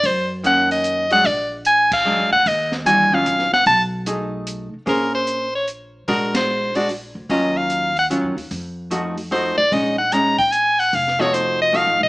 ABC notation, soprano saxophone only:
X:1
M:3/4
L:1/8
Q:"Swing" 1/4=149
K:Bbm
V:1 name="Soprano saxophone"
c z g e2 g | =d z a f2 g | e z a f2 g | =a z4 z |
B c2 d z2 | B c2 =d z2 | e f2 g z2 | z4 c =d |
e g b =g a _g | f d c e f e |]